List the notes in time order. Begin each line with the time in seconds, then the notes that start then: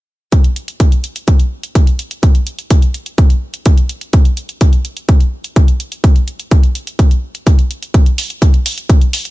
0.32 kick, closed hi-hat
0.44 closed hi-hat
0.56 closed hi-hat
0.68 closed hi-hat
0.80 kick, closed hi-hat
0.92 closed hi-hat
1.04 closed hi-hat
1.16 closed hi-hat
1.28 kick, closed hi-hat
1.40 closed hi-hat
1.63 closed hi-hat
1.75 kick, closed hi-hat
1.87 closed hi-hat
1.99 closed hi-hat
2.11 closed hi-hat
2.23 kick, closed hi-hat
2.35 closed hi-hat
2.47 closed hi-hat
2.59 closed hi-hat
2.70 kick, closed hi-hat
2.82 closed hi-hat
2.94 closed hi-hat
3.06 closed hi-hat
3.18 kick, closed hi-hat
3.30 closed hi-hat
3.54 closed hi-hat
3.66 kick, closed hi-hat
3.78 closed hi-hat
3.89 closed hi-hat
4.01 closed hi-hat
4.13 kick, closed hi-hat
4.25 closed hi-hat
4.37 closed hi-hat
4.49 closed hi-hat
4.61 kick, closed hi-hat
4.73 closed hi-hat
4.85 closed hi-hat
4.97 closed hi-hat
5.09 kick, closed hi-hat
5.20 closed hi-hat
5.44 closed hi-hat
5.56 kick, closed hi-hat
5.68 closed hi-hat
5.80 closed hi-hat
5.92 closed hi-hat
6.04 kick, closed hi-hat
6.16 closed hi-hat
6.28 closed hi-hat
6.40 closed hi-hat
6.51 kick, closed hi-hat
6.63 closed hi-hat
6.75 closed hi-hat
6.87 closed hi-hat
6.99 kick, closed hi-hat
7.11 closed hi-hat
7.35 closed hi-hat
7.47 kick, closed hi-hat
7.59 closed hi-hat
7.71 closed hi-hat
7.83 closed hi-hat
7.94 kick, closed hi-hat
8.06 closed hi-hat
8.18 open hi-hat
8.30 closed hi-hat
8.42 kick, closed hi-hat
8.54 closed hi-hat
8.66 open hi-hat
8.78 closed hi-hat
8.90 kick, closed hi-hat
9.01 closed hi-hat
9.13 open hi-hat
9.25 closed hi-hat